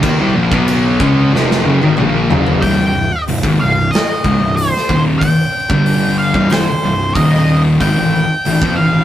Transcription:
0.03 D#2 D#3 A#3, kick, crash
0.18 C2 C3 G3
0.35 A#1 A#2 F3
0.52 B1 B2 F#3 B3, kick
0.68 crash
1.00 C#2 C#3 G#3 C#4, kick
1.33 F1 F2 C3 F3, snare
1.51 snare
1.65 F#1 F#2 C#3
1.81 G#1 G#2 D#3, high tom
1.97 A#1 A#2 F3 A#3, mid tom
2.30 F#1 F#2 C#3 F#3, floor tom
2.46 floor tom
2.62 C1 C2 G2 G5, kick, open hi-hat
2.78 C1 C2 G2
3.28 C1 C2 G2, open hi-hat
3.43 G#1 G#2 D#3, kick
3.60 C1 C2 G2 F5
3.91 D#5, open hi-hat
3.95 snare
4.24 C#1 C#2 G#2, kick
4.41 C1 C2 G2
4.56 C5, open hi-hat
4.76 snare
4.89 D#1 D#2 A#2 D#3, kick
5.18 G5, kick, open hi-hat
5.69 G1 G2 D3 G3, kick
5.86 open hi-hat
6.18 F5
6.34 C1 C2 G2, kick
6.50 C1 C2 G2 C5, snare, open hi-hat
6.68 muted picked electric bass stroke, muted distorted electric guitar stroke
6.83 C1 C2 G2
7.15 D#1 D#2 A#2 D#3 D#5, kick, open hi-hat
7.34 snare
7.80 G#1 G#2 D#3 G5, kick, open hi-hat
7.98 G#1 A2 E3
8.45 G#1 A2 E3, open hi-hat
8.61 F2 F3 C4, kick
8.76 G#1 A2 F5
8.80 E3

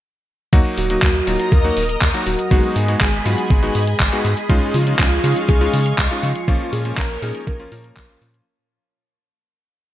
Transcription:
0.53 D#2 F#3 A#3 D#4 F#4 A#4 D#5 A#5 D#6, kick, closed hi-hat
0.65 closed hi-hat
0.77 D#1 F#4, open hi-hat
0.90 F#3 A#3 D#4 F#4, closed hi-hat
1.02 D#2, kick, clap, closed hi-hat
1.15 closed hi-hat
1.27 D#1 F#3 A#3 D#4 F4, open hi-hat
1.40 closed hi-hat
1.52 D#2 A#4, kick, closed hi-hat
1.64 F#3 A#3 D#4 F#4, closed hi-hat
1.77 D#1, open hi-hat
1.89 closed hi-hat
2.01 D#2, kick, clap, closed hi-hat
2.14 F#3 A#3 D#4 F#4, closed hi-hat
2.26 D#1 F#4, open hi-hat
2.39 closed hi-hat
2.51 G#1 G#3 B3 D#4 F#4 G#4 D#5 G#5 B5, kick, closed hi-hat
2.64 closed hi-hat
2.76 G#2 G#4, open hi-hat
2.88 G#3 B3 D#4 F#4, closed hi-hat
3.01 G#1 G#4, kick, clap, closed hi-hat
3.13 closed hi-hat
3.25 G#2 G#3 B3 D#4 F4 F#4, open hi-hat
3.38 closed hi-hat
3.50 G#1 G#4, kick, closed hi-hat
3.63 G#3 B3 D#4 F#4, closed hi-hat
3.75 G#2, open hi-hat
3.87 closed hi-hat
4.00 G#1, kick, clap, closed hi-hat
4.12 G#3 B3 D#4 F#4, closed hi-hat
4.25 G#2, open hi-hat
4.37 closed hi-hat
4.49 C#2 G#3 C#4 D#4 F4 F5 C#6, kick, closed hi-hat
4.62 closed hi-hat
4.74 C#3 F4, open hi-hat
4.87 G#3 C#4 D#4 F4, closed hi-hat
4.99 C#2, kick, clap, closed hi-hat
5.11 closed hi-hat
5.24 C#3 G#3 C#4 D#4 F4, open hi-hat
5.36 closed hi-hat
5.49 C#2 G#4, kick, closed hi-hat
5.61 G#3 C#4 D#4 F4, closed hi-hat
5.73 C#3, open hi-hat
5.86 closed hi-hat
5.98 C#2, kick, clap, closed hi-hat
6.11 G#3 C#4 D#4 F4, closed hi-hat
6.23 C#3 F4, open hi-hat
6.36 closed hi-hat
6.48 A#1 F3 A#3 C#4 F4 A#4 C#5, kick, closed hi-hat
6.60 closed hi-hat
6.73 A#2 G#4, open hi-hat
6.85 F3 A#3 C#4 F4, closed hi-hat
6.97 A#1 A#4, kick, clap, closed hi-hat
7.10 closed hi-hat
7.22 A#2 F3 A#3 C#4 D#4 G#4, open hi-hat
7.35 closed hi-hat
7.47 A#1 A#4, kick, closed hi-hat
7.59 F3 A#3 C#4 F4, closed hi-hat
7.72 A#2 F3 A#3 C#4 A#4, open hi-hat
7.84 closed hi-hat
7.97 A#1, kick, clap, closed hi-hat
8.09 F3 A#3 C#4 F4, closed hi-hat
8.21 A#2, open hi-hat
8.34 closed hi-hat

